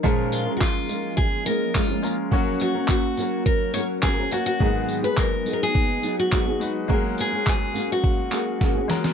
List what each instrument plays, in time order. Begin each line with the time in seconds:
Already playing: ambient pad C#4
0.03 nylon-string guitar A#2 F3 G#3 C#4 F4 A#4, ambient pad F3 A#3 G#4, grand piano G#3 C#4 F4 A#4, kick
0.32 steel-string acoustic guitar F4, tambourine
0.46 nylon-string guitar G#3 C#4 F4 A#4
0.57 steel-string acoustic guitar F#4
0.61 steel-string acoustic guitar F4, kick, clap
0.89 nylon-string guitar G#3 C#4 F4 A#4, tambourine
1.17 steel-string acoustic guitar G#4, kick
1.46 nylon-string guitar G#3 C#4 F4 A#4, steel-string acoustic guitar A#4, tambourine
1.74 nylon-string guitar G#3 C#4 F4 A#4, steel-string acoustic guitar F4, kick, clap
1.88 nylon-string guitar G#3 C#4 F4 A#4
2.03 grand piano G#3 C#4 F4 A#4, tambourine
2.31 nylon-string guitar F#3 C#4 F#4 A#4, ambient pad F#3 A#4, grand piano A#3 C#4 F#4 C#5, kick
2.60 steel-string acoustic guitar F#4, tambourine
2.74 nylon-string guitar C#4 F#4 A#4
2.88 steel-string acoustic guitar F#4, kick, clap
3.17 nylon-string guitar F#3 C#4 F#4 A#4, tambourine
3.46 steel-string acoustic guitar A#4, kick
3.74 nylon-string guitar F#3 C#4 F#4 A#4, steel-string acoustic guitar C#5, tambourine
4.02 nylon-string guitar F#3 C#4 F#4 A#4, steel-string acoustic guitar G#4, kick, clap
4.16 nylon-string guitar C#4 F#4 A#4
4.31 grand piano A#3 C#4 F#4 C#5, steel-string acoustic guitar F#4, tambourine
4.46 steel-string acoustic guitar F#4
4.60 nylon-string guitar G#2 D#3 F#3 B3 D#4 G#4, grand piano G#3 D#4 F#4 A#4, ambient pad B3 D#4 G#4, kick
4.69 grand piano B3
4.89 tambourine
5.02 nylon-string guitar F#3 B3 D#4 G#4, steel-string acoustic guitar B4
5.17 steel-string acoustic guitar A#4, kick, clap
5.45 nylon-string guitar F#3 B3 D#4 G#4, tambourine
5.53 steel-string acoustic guitar A#4
5.63 steel-string acoustic guitar G#4
5.75 kick
6.02 nylon-string guitar F#3 B3 D#4 G#4, tambourine
6.19 steel-string acoustic guitar F#4
6.31 nylon-string guitar F#3 B3 D#4 G#4, steel-string acoustic guitar F#4, kick, clap
6.46 nylon-string guitar F#3 B3 D#4 G#4
6.60 grand piano G#3 D#4 F#4 B4, tambourine
6.88 nylon-string guitar F#3 A#3 C#4 F#4 G#4, grand piano G#3 C#4 F#4 A#4, ambient pad A#3 C#4 G#4, kick
7.18 steel-string acoustic guitar G#4, tambourine
7.32 nylon-string guitar C#4 F#4 G#4
7.47 steel-string acoustic guitar G#4, kick, clap
7.74 nylon-string guitar A#3 C#4 F#4 G#4, tambourine
7.92 steel-string acoustic guitar F#4
8.04 kick
8.31 nylon-string guitar A#3 C#4 F#4 G#4, clap, tambourine
8.60 nylon-string guitar A#3 C#4 F#4 G#4, kick, snare
8.75 nylon-string guitar C#4 F#4 G#4
8.88 grand piano G#3 C#4 F#4 A#4, snare
9.04 snare